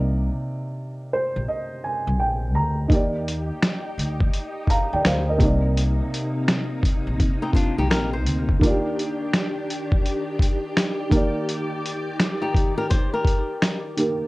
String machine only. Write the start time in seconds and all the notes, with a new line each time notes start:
2.90 D#4 G4
5.40 C3 A#3 D#4
8.62 D#3 D4 G4
11.13 D#3 D5